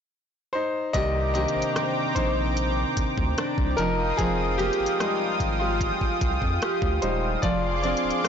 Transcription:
0.53 0.92 D#4 medium
0.53 0.95 C5 medium
0.93 1.46 C2 loud
0.93 3.86 C3 medium
0.93 3.74 D#3 medium
0.93 3.74 A#3 medium
0.93 1.33 G4 medium
0.93 3.75 C5 medium
0.93 3.75 D5 medium
0.93 1.32 D#5 loud
0.93 3.75 G5 medium
0.93 3.75 A#5 medium
0.93 3.75 D6 medium
0.93 kick loud
0.93 closed hi-hat medium
1.34 1.75 D#3 medium
1.34 3.87 A#3 medium
1.34 3.36 D4 medium
1.34 2.12 G4 medium
1.34 2.18 D#5 loud
1.34 closed hi-hat soft
1.48 closed hi-hat soft
1.56 1.64 A#1 soft
1.62 closed hi-hat medium
1.76 3.78 D#3 medium
1.76 cross-stick loud
1.76 closed hi-hat medium
2.15 2.85 A#1 medium
2.15 3.34 D#4 medium
2.15 3.33 C5 medium
2.15 kick medium
2.15 closed hi-hat medium
2.57 closed hi-hat medium
2.97 3.05 D2 soft
2.97 kick medium
2.97 closed hi-hat medium
3.18 3.35 D2 medium
3.18 kick medium
3.38 3.86 D4 medium
3.38 cross-stick loud
3.38 closed hi-hat medium
3.58 3.75 C2 medium
3.58 kick medium
3.77 4.13 F1 loud
3.77 4.18 F3 medium
3.77 4.16 D#4 medium
3.77 7.39 F4 medium
3.77 4.19 A#4 loud
3.77 7.39 F5 medium
3.77 7.39 G5 medium
3.77 7.39 D#6 medium
3.77 closed hi-hat medium
4.17 4.71 F1 loud
4.17 7.43 F3 medium
4.17 4.57 C4 medium
4.17 4.60 G#4 loud
4.17 kick loud
4.17 closed hi-hat medium
4.58 4.99 G#3 medium
4.58 5.57 A#3 medium
4.58 7.51 D#4 medium
4.58 5.63 G4 loud
4.58 6.61 G4 medium
4.58 closed hi-hat soft
4.73 closed hi-hat soft
4.80 4.88 G#1 soft
4.86 closed hi-hat medium
4.99 6.17 G3 medium
4.99 7.83 G#3 medium
4.99 5.60 G#3 medium
4.99 6.18 D#4 medium
4.99 cross-stick loud
4.99 closed hi-hat medium
5.40 5.92 G#1 medium
5.40 kick medium
5.40 closed hi-hat medium
5.59 6.38 G#3 medium
5.59 6.37 F4 medium
5.81 kick medium
5.81 closed hi-hat medium
6.01 kick medium
6.21 6.39 C2 medium
6.21 kick medium
6.21 closed hi-hat medium
6.42 6.59 F2 loud
6.42 kick medium
6.62 7.51 G4 medium
6.62 cross-stick loud
6.62 closed hi-hat medium
6.82 6.99 D2 medium
6.82 kick medium
7.02 7.37 D#1 medium
7.02 7.39 G3 soft
7.02 7.39 G#3 soft
7.02 7.41 D#4 medium
7.02 7.44 C5 medium
7.02 closed hi-hat medium
7.42 7.95 F1 loud
7.42 8.28 F3 medium
7.42 7.81 F4 medium
7.42 8.28 G#4 medium
7.42 7.81 D5 medium
7.42 8.28 F5 medium
7.42 8.28 C6 medium
7.42 8.28 D6 medium
7.42 kick loud
7.42 closed hi-hat medium
7.83 8.24 C4 medium
7.83 8.28 D4 medium
7.83 8.28 F4 medium
7.83 8.28 G#4 medium
7.83 8.28 D5 medium
7.83 closed hi-hat soft
7.97 closed hi-hat soft
8.04 8.12 D1 soft
8.11 closed hi-hat medium
8.24 8.28 C4 medium
8.24 cross-stick loud
8.24 closed hi-hat medium

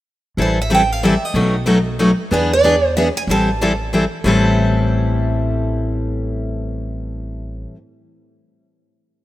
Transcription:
0.37 1.15 A1 medium
0.37 0.58 E3 medium
0.37 0.58 G3 medium
0.37 0.58 C4 medium
0.37 0.58 E4 medium
0.37 0.58 A4 medium
0.42 0.58 C5 medium
0.62 0.73 E5 medium
0.70 0.81 E3 medium
0.70 0.81 G3 medium
0.70 0.81 C4 medium
0.70 0.81 E4 loud
0.70 0.81 A4 medium
0.75 0.92 G5 medium
0.92 1.04 F5 medium
1.03 1.13 E3 medium
1.03 1.14 G3 medium
1.03 1.13 C4 medium
1.03 1.14 E4 medium
1.03 1.14 A4 medium
1.03 1.25 E5 medium
1.25 2.20 D#5 medium
1.34 2.12 B1 medium
1.34 1.54 B2 medium
1.34 1.55 F#3 medium
1.34 1.55 A3 medium
1.34 1.55 D#4 medium
1.34 1.55 F#4 medium
1.66 1.77 B2 medium
1.66 1.77 F#3 medium
1.66 1.77 A3 medium
1.66 1.78 D#4 medium
1.66 1.78 F#4 medium
1.99 2.10 B2 medium
1.99 2.10 F#3 medium
1.99 2.10 A3 medium
1.99 2.10 D#4 medium
1.99 2.10 F#4 medium
2.31 3.09 E2 medium
2.31 2.51 E3 medium
2.31 2.51 B3 medium
2.31 2.51 D4 medium
2.31 2.52 G#4 medium
2.31 2.50 B4 medium
2.53 2.94 D5 medium
2.64 2.74 E3 medium
2.64 2.74 B3 medium
2.64 2.75 D4 medium
2.64 2.75 G#4 medium
2.97 3.07 E3 medium
2.97 3.07 B3 medium
2.97 3.07 D4 medium
2.97 3.07 G#4 medium
2.97 3.02 E5 medium
3.17 3.22 G#5 loud
3.27 4.05 A1 medium
3.27 3.48 E3 medium
3.27 3.49 G3 medium
3.27 3.49 C4 medium
3.27 3.49 E4 medium
3.27 3.49 A4 medium
3.27 3.90 A5 loud
3.61 3.71 E3 medium
3.61 3.72 G3 medium
3.61 3.72 C4 medium
3.61 3.72 E4 medium
3.61 3.72 A4 medium
3.93 4.03 E3 medium
3.93 4.04 G3 medium
3.93 4.03 C4 medium
3.93 4.04 E4 medium
3.93 4.04 A4 medium
4.24 7.64 A1 medium
4.24 7.74 A2 medium
4.24 7.75 E3 medium
4.24 7.76 G3 medium
4.24 7.76 C4 medium
4.24 7.77 E4 medium
4.24 7.78 A4 loud

